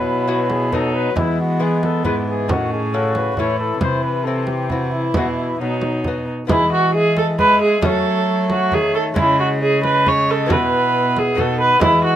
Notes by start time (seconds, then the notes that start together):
Already playing: B2 F#3 E4 B4
0.27 B3 E4 F#4
0.50 G#4, frame drum
0.72 F#3 B3 D#4 F#4 A4, frame drum
0.94 B4
1.16 E3 G#3 B3 E4, frame drum
1.40 F#4
1.59 G#3 B3 E4 G#4
1.83 A4, frame drum
2.05 G#2 E3 G#3 B3 E4 B4, frame drum
2.28 G#4
2.48 A2 D#3 C#4 F#4, frame drum
2.73 G#4
2.94 C#3 A3 C#4 E4 F#4 A4
3.15 B4, frame drum
3.37 A2 E3 A3 C#4 E4 C#5, frame drum
3.59 A4
3.80 C3 E4 C5, frame drum
4.03 B4
4.24 E3 C4 E4 A4
4.47 G4, frame drum
4.70 E3 C4 E4 F#4, frame drum
4.94 E4
5.14 B2 B3 E4 F#4, frame drum
5.39 E4
5.60 B2 F#3 D#4
5.82 frame drum
6.04 B3 F#4, frame drum
6.47 E3 G#3 B3 E4 G#4, frame drum
6.51 E3 E5
6.73 F#4
6.95 G#3 G#4 E5
7.17 A4, frame drum
7.39 G#3 B4 E5, frame drum
7.62 G#4
7.81 F#3 A3 C#4 F#4 C#5, frame drum
7.85 A4
8.50 F#4, frame drum
8.72 D#3 G#4, frame drum
8.95 A4
9.14 C#3 G#3 C#4 E4, frame drum
9.18 E4 C#5
9.40 F#4
9.62 G#3 G#4 C#5
9.84 B4, frame drum
10.06 G#3 C#5, frame drum
10.28 A4 D#5
10.46 B3 E4 F#4 E5, frame drum
10.50 B2 B3 B4
11.17 G#4, frame drum
11.35 B2 B3 D#4 F#4 D#5, frame drum
11.40 A4
11.61 B4
11.80 E3 G#3 B3 E4, frame drum
11.84 E5
12.05 F#4